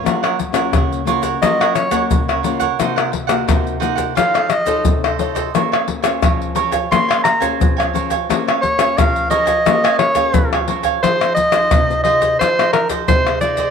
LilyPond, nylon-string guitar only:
\new Staff \with { instrumentName = "Nylon-string guitar" } { \time 4/4 \key bes \minor \tempo 4 = 87 << { <bes des' f'>8 r16 <bes des' f'>8. <bes des' f'>8 <bes des' f'>8. <bes des'>8. <bes des' f'>16 r16 | <bes ees' ges'>8 r16 <bes ees' ges'>8. <bes ees' ges'>8 <ees' a' des''>8 r16 <ees' a' des''>8. <ees' a' des''>8 | <des' aes' c''>8. <des' aes' c''>8. <des' aes' c''>16 r16 <des' aes' c''>8 r16 <des' aes' c''>8. <des' aes' c''>16 r16 | <des' aes' c''>8 r16 <des' aes' c''>8. <des' aes' c''>16 r16 <des' aes' c''>8. <des' aes'>8. <des' aes' c''>8 |
\key f \minor <ees' aes'>8 r16 <ees' aes' c''>8 <ees' aes' c''>4 <ees' aes' c''>8. <ees' aes' c''>16 r16 <ees' aes' c''>16 r16 | } \\ { ges4 des4 ges4 des4 | c4 c4 f4 c4 | bes4 f4 bes4 f4 | bes4 f4 bes4 f4 |
f4 c4 f4 c4 | } >> }